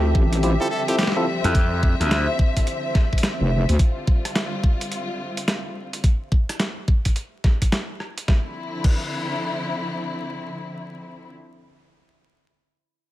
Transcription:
0.00 0.13 D2 medium
0.00 6.00 D3 medium
0.00 3.75 F3 medium
0.00 0.41 C4 medium
0.00 6.00 C4 medium
0.00 0.41 E4 medium
0.00 0.41 F4 medium
0.00 3.79 G4 medium
0.00 0.41 A4 medium
0.00 3.80 C5 medium
0.00 3.75 E5 medium
0.15 0.58 A1 loud
0.15 kick loud
0.33 closed hi-hat medium
0.43 0.52 C4 medium
0.43 0.52 E4 medium
0.43 0.52 F4 medium
0.43 0.52 G4 loud
0.43 closed hi-hat medium
0.60 0.66 C4 medium
0.60 0.66 E4 medium
0.60 0.66 F4 medium
0.60 0.66 G4 loud
0.60 0.67 A4 medium
0.60 3.80 E5 medium
0.71 0.82 A4 medium
0.88 0.97 C4 medium
0.88 0.97 E4 medium
0.88 0.97 F4 medium
0.88 0.95 G4 medium
0.88 0.97 A4 medium
0.88 closed hi-hat medium
0.98 1.10 G4 medium
0.98 snare loud
0.98 closed hi-hat medium
1.03 snare loud
1.07 snare medium
1.12 snare medium
1.16 1.25 C4 loud
1.16 1.25 E4 medium
1.16 1.25 F4 medium
1.16 1.25 A4 loud
1.44 1.98 F2 medium
1.44 1.53 C4 medium
1.44 1.53 E4 medium
1.44 1.53 F4 medium
1.44 1.53 A4 medium
1.44 closed hi-hat medium
1.55 kick loud
1.55 closed hi-hat medium
1.83 kick loud
2.00 2.26 D2 loud
2.00 cross-stick soft
2.00 closed hi-hat medium
2.11 snare loud
2.11 closed hi-hat medium
2.39 kick loud
2.57 kick medium
2.57 closed hi-hat medium
2.67 closed hi-hat soft
2.95 kick loud
2.95 snare soft
3.13 kick medium
3.18 closed hi-hat medium
3.23 snare loud
3.23 closed hi-hat medium
3.40 3.66 F1 loud
3.69 3.78 D2 loud
3.69 closed hi-hat medium
3.79 6.02 G3 medium
3.79 6.02 F4 medium
3.79 kick loud
3.79 closed hi-hat medium
4.07 kick loud
4.25 cross-stick soft
4.25 closed hi-hat medium
4.35 snare loud
4.35 closed hi-hat medium
4.64 kick loud
4.81 closed hi-hat medium
4.92 closed hi-hat medium
5.37 closed hi-hat medium
5.48 snare loud
5.48 closed hi-hat medium
5.93 closed hi-hat medium
6.04 kick loud
6.04 closed hi-hat medium
6.32 kick loud
6.49 cross-stick soft
6.49 closed hi-hat medium
6.60 snare loud
6.60 closed hi-hat medium
6.88 kick loud
7.05 kick medium
7.05 closed hi-hat medium
7.16 closed hi-hat medium
7.44 kick loud
7.44 snare soft
7.62 kick medium
7.62 closed hi-hat medium
7.72 cross-stick soft
7.72 snare loud
7.72 closed hi-hat medium
8.00 cross-stick soft
8.18 closed hi-hat medium
8.28 11.28 D3 medium
8.28 11.28 F3 medium
8.28 11.28 C4 medium
8.28 11.28 E4 medium
8.28 kick loud
8.28 snare medium
8.84 kick loud
8.84 crash medium

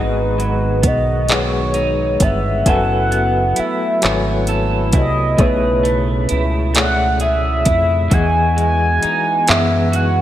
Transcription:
0.00 0.85 G#1 medium
0.00 2.67 G#2 medium
0.00 2.64 D#3 medium
0.00 0.41 G#3 medium
0.00 1.19 G#3 medium
0.00 5.35 B3 medium
0.00 1.73 D#4 medium
0.00 2.54 F#4 medium
0.00 2.63 F#4 medium
0.00 1.20 G#4 medium
0.00 0.88 B4 medium
0.00 1.20 B4 medium
0.00 1.21 D#5 medium
0.00 1.21 F#5 medium
0.38 1.30 F#3 medium
0.38 closed hi-hat soft
0.83 2.17 B1 loud
0.83 2.22 B3 medium
0.83 kick loud
0.83 closed hi-hat medium
0.87 1.34 D#5 medium
1.28 2.66 F#3 medium
1.28 2.55 G#3 medium
1.28 2.56 G#4 medium
1.28 2.56 B4 medium
1.28 2.57 F#5 medium
1.28 clap loud
1.28 closed hi-hat medium
1.33 2.25 C#5 loud
1.74 2.75 D#4 medium
1.74 closed hi-hat medium
2.20 2.63 G1 medium
2.20 3.11 B3 medium
2.20 2.70 E5 loud
2.20 kick medium
2.20 closed hi-hat medium
2.65 3.54 F#1 loud
2.65 3.92 F#3 medium
2.65 5.41 F#3 medium
2.65 5.37 A3 medium
2.65 8.08 E4 medium
2.65 3.92 F#4 medium
2.65 3.92 A4 medium
2.65 4.48 A4 medium
2.65 3.93 B4 medium
2.65 3.93 E5 medium
2.65 3.61 F#5 loud
2.65 3.92 G#5 medium
2.65 kick loud
2.65 closed hi-hat medium
3.11 4.02 B3 medium
3.11 closed hi-hat soft
3.56 4.93 E4 medium
3.56 4.49 E5 medium
3.56 muted fingered electric bass stroke soft
3.56 closed hi-hat medium
4.01 4.94 G#1 loud
4.01 5.28 F#3 medium
4.01 5.83 B3 medium
4.01 5.28 F#4 medium
4.01 5.29 A4 medium
4.01 5.29 B4 medium
4.01 5.29 C#5 medium
4.01 5.29 G#5 medium
4.01 clap loud
4.01 closed hi-hat medium
4.47 5.38 A4 medium
4.47 closed hi-hat medium
4.93 5.35 C2 medium
4.93 6.28 E4 medium
4.93 5.43 D#5 loud
4.93 kick loud
4.93 closed hi-hat medium
5.37 6.26 B1 medium
5.37 6.64 B2 medium
5.37 8.11 B2 medium
5.37 8.09 C#3 medium
5.37 6.65 A3 medium
5.37 8.09 A3 medium
5.37 7.21 G#4 medium
5.37 6.65 G#4 medium
5.37 6.42 B4 loud
5.37 6.65 C#5 medium
5.37 6.66 E5 medium
5.37 kick loud
5.37 closed hi-hat medium
5.83 6.73 A3 medium
5.83 closed hi-hat soft
6.29 7.63 C#2 medium
6.29 7.65 E4 medium
6.29 closed hi-hat medium
6.74 8.01 B2 medium
6.74 8.20 A3 medium
6.74 8.01 A3 medium
6.74 8.02 G#4 medium
6.74 8.02 C#5 medium
6.74 6.83 D5 medium
6.74 7.19 F#5 loud
6.74 clap loud
6.74 closed hi-hat medium
6.84 8.06 E5 medium
7.20 8.10 G#4 medium
7.20 8.15 E5 loud
7.20 closed hi-hat medium
7.65 8.08 F2 medium
7.65 9.02 E4 medium
7.65 kick medium
7.65 closed hi-hat medium
8.10 8.99 E2 loud
8.10 10.21 E3 medium
8.10 9.38 E3 medium
8.10 10.21 E3 medium
8.10 10.21 B3 medium
8.10 9.38 B3 medium
8.10 9.92 F#4 medium
8.10 10.21 F#4 medium
8.10 9.39 G#4 medium
8.10 8.58 G#5 loud
8.10 kick loud
8.10 closed hi-hat medium
8.14 9.39 D#5 medium
8.14 9.39 F#5 medium
8.56 9.48 G#3 medium
8.56 9.51 G#5 loud
8.56 closed hi-hat soft
9.03 10.21 D#4 medium
9.03 muted fingered electric bass stroke soft
9.03 closed hi-hat medium
9.47 10.21 F#2 medium
9.47 10.21 E3 medium
9.47 10.21 G#3 medium
9.47 10.21 B3 medium
9.47 10.21 G#4 medium
9.47 10.21 B4 medium
9.47 9.97 E5 loud
9.47 10.21 F#5 medium
9.47 clap loud
9.47 closed hi-hat medium
9.92 10.21 F#4 medium
9.92 10.21 F#5 loud
9.92 closed hi-hat medium

